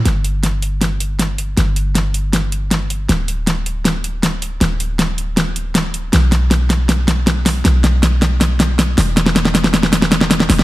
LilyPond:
<<
  \new Staff \with { instrumentName = "808-style bass" } { \clef bass \time 4/4 \key g \major \tempo 4 = 158 g,,1 | g,,1 | d,,1 | d,,1 |
b,,1 | b,,2.~ b,,8 e,,8~ | e,,2.~ e,,8 e,,8 | }
  \new DrumStaff \with { instrumentName = "Drums" } \drummode { \time 4/4 <hh sn>8 hh8 <hh sn>8 hh8 <hh sn>8 hh8 <hh sn>8 hh8 | <hh sn>8 hh8 <hh sn>8 hh8 <hh sn>8 hh8 <hh sn>8 hh8 | <hh sn>8 hh8 <hh sn>8 hh8 <hh sn>8 hh8 <hh sn>8 hh8 | <hh sn>8 hh8 <hh sn>8 hh8 <hh sn>8 hh8 <hh sn>8 hh8 |
<hh sn>8 <hh sn>8 <hh sn>8 <hh sn>8 <hh sn>8 <hh sn>8 <hh sn>8 <hho sn>8 | <hh sn>8 <hh sn>8 <hh sn>8 <hh sn>8 <hh sn>8 <hh sn>8 <hh sn>8 <hho sn>8 | <hh sn>16 sn16 <hh sn>16 sn16 <hh sn>16 sn16 <hh sn>16 sn16 <hh sn>16 sn16 <hh sn>16 sn16 <hh sn>16 sn16 <hho sn>16 sn16 | }
>>